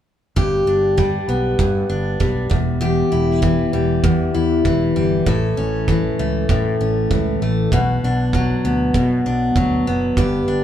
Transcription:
0.36 0.62 G1 medium
0.36 1.59 G2 medium
0.36 2.81 G4 medium
0.36 kick medium
0.67 1.17 G1 medium
0.67 1.88 D4 soft
0.97 2.20 G3 medium
0.97 kick medium
1.28 1.54 B1 medium
1.28 3.73 B3 medium
1.59 1.84 G2 medium
1.59 2.49 G2 medium
1.59 kick medium
1.90 2.15 G1 medium
1.90 2.57 D4 medium
2.20 2.46 B1 medium
2.20 3.42 G3 medium
2.20 kick medium
2.50 3.02 E1 medium
2.50 2.80 E2 medium
2.50 kick medium
2.81 4.03 E2 medium
2.81 5.27 G4 medium
3.12 3.63 E1 medium
3.12 4.34 E4 medium
3.42 4.65 E3 medium
3.42 kick medium
3.73 3.99 E1 medium
3.73 4.95 G3 medium
4.04 4.29 E2 medium
4.04 5.27 E2 medium
4.04 kick medium
4.34 4.60 E2 medium
4.34 5.57 E4 medium
4.65 4.91 E1 medium
4.65 5.88 E3 medium
4.65 kick medium
4.96 5.22 G1 medium
4.96 5.33 G3 medium
5.26 5.52 A1 medium
5.26 6.49 A2 medium
5.26 7.72 A4 medium
5.26 kick medium
5.57 6.08 A1 medium
5.57 6.79 C#4 medium
5.88 7.10 E3 medium
5.88 kick medium
6.19 6.44 C#2 medium
6.19 7.41 A3 medium
6.49 6.75 A2 medium
6.49 7.72 A2 medium
6.49 kick medium
6.81 7.06 A1 medium
6.81 7.78 C#4 soft
7.11 7.36 C#2 medium
7.11 7.78 E3 medium
7.11 kick medium
7.42 7.67 A1 medium
7.42 7.78 A3 soft
7.72 7.97 B1 medium
7.72 8.94 B2 medium
7.72 10.17 F#4 soft
7.72 kick medium
8.04 8.53 B1 medium
8.04 9.26 D4 medium
8.33 9.55 F#3 medium
8.33 kick medium
8.65 8.89 D2 medium
8.65 9.87 B3 medium
8.94 9.20 B2 medium
8.94 10.17 B2 medium
8.94 kick medium
9.26 9.51 B1 medium
9.26 10.47 D4 medium
9.56 9.81 D2 medium
9.56 10.23 F#3 medium
9.56 kick medium
9.87 10.12 F#1 medium
9.87 10.64 B3 medium
10.17 10.42 G1 medium
10.17 10.64 G2 medium
10.17 10.64 G4 medium
10.17 kick medium
10.48 10.64 G1 medium
10.48 10.64 D4 medium

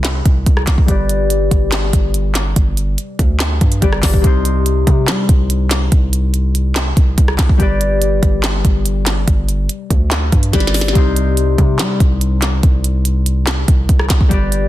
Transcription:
0.00 0.21 C2 loud
0.00 0.93 C3 medium
0.00 0.85 G3 medium
0.00 0.85 D#4 medium
0.00 0.86 C5 medium
0.04 snare loud
0.04 clap loud
0.04 closed hi-hat medium
0.25 0.46 C2 loud
0.25 kick loud
0.25 closed hi-hat medium
0.46 0.67 C2 loud
0.46 kick loud
0.46 closed hi-hat medium
0.57 cross-stick medium
0.67 0.78 C2 loud
0.67 kick loud
0.67 snare loud
0.67 clap medium
0.67 closed hi-hat medium
0.78 0.88 C2 loud
0.78 kick loud
0.86 1.49 G1 loud
0.86 3.80 G3 medium
0.86 3.78 G4 medium
0.86 3.79 B4 medium
0.86 kick loud
0.86 closed hi-hat medium
0.91 3.79 D5 medium
1.09 closed hi-hat medium
1.30 closed hi-hat medium
1.51 1.92 G1 loud
1.51 kick medium
1.51 closed hi-hat medium
1.72 snare loud
1.72 clap loud
1.72 closed hi-hat medium
1.93 2.54 G1 loud
1.93 kick loud
1.93 closed hi-hat medium
2.14 closed hi-hat medium
2.35 snare loud
2.35 clap medium
2.35 closed hi-hat medium
2.56 2.97 G1 loud
2.56 kick loud
2.56 closed hi-hat medium
2.77 closed hi-hat medium
2.98 closed hi-hat medium
3.19 3.59 D2 loud
3.19 kick medium
3.19 closed hi-hat medium
3.40 snare loud
3.40 clap loud
3.40 closed hi-hat medium
3.61 3.81 G2 loud
3.61 kick loud
3.61 closed hi-hat medium
3.72 closed hi-hat medium
3.81 4.02 G1 loud
3.81 4.22 G3 soft
3.81 4.24 G4 soft
3.81 4.24 B4 soft
3.81 4.25 D5 medium
3.81 kick medium
3.81 closed hi-hat medium
3.93 cross-stick loud
4.03 4.23 G1 loud
4.03 kick loud
4.03 snare loud
4.03 clap medium
4.03 open hi-hat medium
4.14 kick loud
4.22 4.85 C2 loud
4.22 7.65 C3 medium
4.22 7.56 G3 medium
4.22 7.56 D#4 medium
4.22 kick loud
4.22 closed hi-hat medium
4.27 7.57 C5 medium
4.45 closed hi-hat medium
4.66 closed hi-hat medium
4.87 5.10 C3 loud
4.87 kick medium
4.87 closed hi-hat medium
5.08 5.28 G3 loud
5.08 snare loud
5.08 clap medium
5.08 closed hi-hat medium
5.29 5.89 C2 loud
5.29 kick loud
5.29 closed hi-hat medium
5.50 closed hi-hat medium
5.71 snare loud
5.71 clap medium
5.71 closed hi-hat medium
5.92 6.93 C2 loud
5.92 kick loud
5.92 closed hi-hat medium
6.13 closed hi-hat medium
6.34 closed hi-hat medium
6.55 closed hi-hat medium
6.76 snare loud
6.76 clap loud
6.76 closed hi-hat medium
6.97 7.17 C2 loud
6.97 kick loud
6.97 closed hi-hat medium
7.18 7.38 C2 loud
7.18 kick medium
7.18 closed hi-hat medium
7.28 cross-stick loud
7.39 7.49 C2 loud
7.39 kick loud
7.39 snare medium
7.39 clap medium
7.39 closed hi-hat medium
7.49 7.59 C2 loud
7.49 kick loud
7.57 8.20 G1 loud
7.57 10.51 G3 medium
7.57 10.49 G4 medium
7.57 10.50 B4 medium
7.57 kick loud
7.57 closed hi-hat medium
7.62 10.51 D5 medium
7.81 closed hi-hat medium
8.02 closed hi-hat medium
8.23 8.63 G1 loud
8.23 kick loud
8.23 closed hi-hat medium
8.43 snare loud
8.43 clap loud
8.43 closed hi-hat medium
8.65 9.25 G1 loud
8.65 kick loud
8.65 closed hi-hat medium
8.86 closed hi-hat medium
9.06 snare loud
9.06 clap medium
9.06 closed hi-hat medium
9.28 9.68 G1 loud
9.28 kick loud
9.28 closed hi-hat medium
9.49 closed hi-hat medium
9.69 closed hi-hat medium
9.90 10.31 D2 loud
9.90 kick medium
9.90 closed hi-hat medium
10.11 snare loud
10.11 clap loud
10.11 closed hi-hat medium
10.32 10.53 G2 loud
10.32 kick loud
10.32 closed hi-hat medium
10.43 closed hi-hat medium
10.52 10.94 G1 loud
10.52 10.93 G3 soft
10.52 10.95 G4 soft
10.52 10.96 B4 soft
10.52 10.96 D5 medium
10.52 kick medium
10.52 snare medium
10.52 closed hi-hat medium
10.60 snare medium
10.67 snare medium
10.74 snare medium
10.74 open hi-hat medium
10.81 snare loud
10.88 snare medium
10.93 11.56 C2 loud
10.93 14.36 C3 medium
10.93 14.27 G3 medium
10.93 14.27 D#4 medium
10.93 kick loud
10.93 closed hi-hat medium
10.98 14.28 C5 medium
11.16 closed hi-hat medium
11.37 closed hi-hat medium
11.58 11.81 C3 loud
11.58 kick medium
11.58 closed hi-hat medium
11.79 11.99 G3 loud
11.79 snare loud
11.79 clap medium
11.79 closed hi-hat medium
12.00 12.61 C2 loud
12.00 kick loud
12.00 closed hi-hat medium
12.21 closed hi-hat medium
12.42 snare loud
12.42 clap medium
12.42 closed hi-hat medium
12.63 13.64 C2 loud
12.63 kick loud
12.63 closed hi-hat medium
12.84 closed hi-hat medium
13.05 closed hi-hat medium
13.26 closed hi-hat medium
13.47 snare loud
13.47 clap medium
13.47 closed hi-hat medium
13.68 13.88 C2 loud
13.68 kick loud
13.68 closed hi-hat medium
13.89 14.09 C2 loud
13.89 kick loud
13.89 closed hi-hat medium
13.99 cross-stick loud
14.10 14.20 C2 loud
14.10 kick loud
14.10 snare loud
14.10 clap medium
14.10 closed hi-hat medium
14.21 14.31 C2 loud
14.21 kick loud
14.29 14.68 G1 loud
14.29 14.68 G3 medium
14.29 14.68 G4 medium
14.29 14.68 B4 medium
14.29 kick loud
14.29 closed hi-hat medium
14.34 14.68 D5 medium
14.52 closed hi-hat medium

